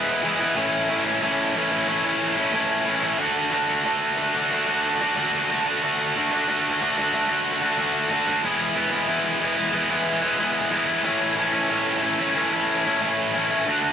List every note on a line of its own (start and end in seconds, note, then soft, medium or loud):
0.00 0.22 E3 loud
0.00 0.22 G#3 medium
0.00 0.23 B3 loud
0.00 0.23 E4 loud
0.23 0.54 E3 medium
0.23 0.40 G#3 medium
0.23 0.39 B3 medium
0.23 0.38 E4 medium
0.39 0.55 G#3 medium
0.39 0.54 B3 medium
0.39 0.54 E4 medium
0.55 1.20 A2 medium
0.55 0.88 E3 medium
0.55 0.89 A3 medium
0.55 0.89 C#4 medium
0.55 0.89 E4 loud
0.89 1.21 E3 medium
0.89 1.06 A3 medium
0.89 1.05 C#4 medium
0.89 1.04 E4 medium
1.05 1.22 A3 medium
1.05 1.22 C#4 medium
1.05 1.22 E4 medium
1.21 1.87 A2 loud
1.21 1.54 E3 loud
1.21 1.55 A3 loud
1.21 1.55 C#4 loud
1.21 1.56 E4 loud
1.55 1.86 E3 medium
1.55 1.73 A3 medium
1.55 1.71 C#4 medium
1.55 1.70 E4 medium
1.71 1.88 A3 medium
1.71 1.88 C#4 medium
1.71 1.88 E4 medium
1.88 2.37 E3 medium
1.88 2.05 A3 medium
1.88 2.04 C#4 medium
1.88 2.03 E4 medium
2.04 2.39 A3 medium
2.04 2.37 C#4 medium
2.04 2.36 E4 medium
2.37 2.53 A3 medium
2.37 2.53 C#4 medium
2.37 2.53 E4 medium
2.52 3.16 A2 medium
2.52 2.85 E3 medium
2.52 2.86 A3 medium
2.52 2.86 C#4 loud
2.52 2.87 E4 loud
2.86 3.17 E3 medium
2.86 3.04 A3 medium
2.86 3.02 C#4 medium
2.86 3.01 E4 medium
3.02 3.18 A3 medium
3.02 3.17 C#4 medium
3.02 3.17 E4 medium
3.18 3.51 D3 loud
3.18 3.52 A3 loud
3.18 3.52 D4 medium
3.18 3.53 F#4 loud
3.51 3.84 D3 medium
3.51 3.70 A3 medium
3.51 3.68 D4 medium
3.51 3.67 F#4 medium
3.68 3.85 A3 medium
3.68 3.85 D4 medium
3.68 3.86 F#4 medium
3.84 4.17 D3 medium
3.84 4.18 A3 loud
3.84 4.19 D4 loud
3.84 4.19 F#4 loud
4.18 4.50 D3 medium
4.18 4.36 A3 medium
4.18 4.34 D4 medium
4.18 4.33 F#4 medium
4.35 4.51 A3 medium
4.35 4.52 D4 medium
4.35 4.52 F#4 medium
4.51 5.00 D3 medium
4.51 4.69 A3 medium
4.51 4.68 D4 medium
4.51 4.67 F#4 medium
4.68 5.01 A3 medium
4.68 5.00 D4 medium
4.68 4.99 F#4 medium
5.01 5.15 A3 medium
5.01 5.16 D4 medium
5.01 5.16 F#4 medium
5.16 5.48 D3 medium
5.16 5.49 A3 loud
5.16 5.49 D4 loud
5.16 5.49 F#4 loud
5.49 5.81 D3 medium
5.49 5.66 A3 medium
5.49 5.65 D4 medium
5.49 5.64 F#4 medium
5.65 5.82 A3 medium
5.65 5.82 D4 medium
5.65 5.83 F#4 medium
5.82 6.14 D3 medium
5.82 6.15 A3 loud
5.82 6.16 D4 loud
5.82 6.16 F#4 loud
6.16 6.46 D3 medium
6.16 6.32 A3 medium
6.16 6.31 D4 medium
6.16 6.30 F#4 medium
6.31 6.47 A3 medium
6.31 6.48 D4 medium
6.31 6.48 F#4 medium
6.47 6.80 D3 loud
6.47 6.80 A3 loud
6.47 6.81 D4 loud
6.47 6.81 F#4 loud
6.81 7.12 D3 medium
6.81 6.98 A3 medium
6.81 6.97 D4 medium
6.81 6.96 F#4 medium
6.98 7.13 A3 medium
6.98 7.14 D4 medium
6.98 7.14 F#4 medium
7.13 7.62 D3 medium
7.13 7.30 A3 medium
7.13 7.29 D4 medium
7.13 7.27 F#4 medium
7.29 7.63 A3 medium
7.29 7.62 D4 medium
7.29 7.61 F#4 medium
7.62 7.77 A3 medium
7.62 7.77 D4 medium
7.62 7.78 F#4 medium
7.77 8.09 D3 loud
7.77 8.10 A3 loud
7.77 8.11 D4 loud
7.77 8.11 F#4 loud
8.10 8.41 D3 medium
8.10 8.28 A3 medium
8.10 8.27 D4 medium
8.10 8.26 F#4 medium
8.27 8.43 A3 medium
8.27 8.42 D4 medium
8.27 8.42 F#4 medium
8.43 8.75 E3 medium
8.43 8.75 G#3 loud
8.43 8.75 B3 loud
8.43 8.77 E4 loud
8.75 9.07 E3 medium
8.75 8.93 G#3 medium
8.75 8.91 B3 medium
8.75 8.91 E4 medium
8.91 9.07 G#3 medium
8.91 9.08 B3 medium
8.91 9.09 E4 medium
9.07 9.39 E3 medium
9.07 9.39 G#3 loud
9.07 9.40 B3 loud
9.07 9.42 E4 loud
9.40 9.71 E3 medium
9.40 9.57 G#3 medium
9.40 9.56 B3 medium
9.40 9.55 E4 medium
9.57 9.72 G#3 medium
9.57 9.73 B3 medium
9.57 9.73 E4 medium
9.72 10.22 E3 medium
9.72 9.90 G#3 medium
9.72 9.90 B3 medium
9.72 9.89 E4 medium
9.90 10.22 G#3 medium
9.90 10.21 B3 medium
9.90 10.20 E4 medium
10.22 10.38 G#3 medium
10.22 10.39 B3 medium
10.22 10.39 E4 medium
10.38 10.69 E3 medium
10.38 10.70 G#3 loud
10.38 10.71 B3 loud
10.38 10.72 E4 loud
10.70 11.02 E3 medium
10.70 10.88 G#3 medium
10.70 10.87 B3 medium
10.70 10.86 E4 medium
10.87 11.03 G#3 medium
10.87 11.03 B3 medium
10.87 11.02 E4 medium
11.03 11.67 A2 medium
11.03 11.35 E3 loud
11.03 11.36 A3 medium
11.03 11.36 C#4 loud
11.03 11.37 E4 loud
11.36 11.68 E3 medium
11.36 11.54 A3 medium
11.36 11.52 C#4 medium
11.36 11.51 E4 medium
11.52 11.69 A3 soft
11.52 11.69 C#4 medium
11.52 11.70 E4 medium
11.69 12.35 A2 loud
11.69 12.00 E3 loud
11.69 12.02 A3 loud
11.69 12.02 C#4 loud
11.69 12.02 E4 loud
12.01 12.34 E3 medium
12.01 12.20 A3 medium
12.01 12.18 C#4 medium
12.01 12.17 E4 medium
12.19 12.36 A3 medium
12.19 12.35 C#4 medium
12.19 12.36 E4 medium
12.35 12.85 E3 medium
12.35 12.53 A3 medium
12.35 12.51 C#4 medium
12.35 12.50 E4 medium
12.51 12.86 A3 medium
12.51 12.85 C#4 medium
12.51 12.84 E4 medium
12.85 13.02 A3 medium
12.85 13.01 C#4 medium
12.85 13.02 E4 medium
13.01 13.64 A2 loud
13.01 13.32 E3 loud
13.01 13.34 A3 loud
13.01 13.34 C#4 loud
13.01 13.35 E4 loud
13.33 13.64 E3 medium
13.33 13.52 A3 medium
13.33 13.50 C#4 medium
13.33 13.49 E4 medium
13.51 13.67 A3 medium
13.51 13.65 C#4 medium
13.51 13.65 E4 medium
13.66 13.93 D3 medium
13.66 13.93 A3 loud
13.66 13.93 D4 loud
13.66 13.93 F#4 loud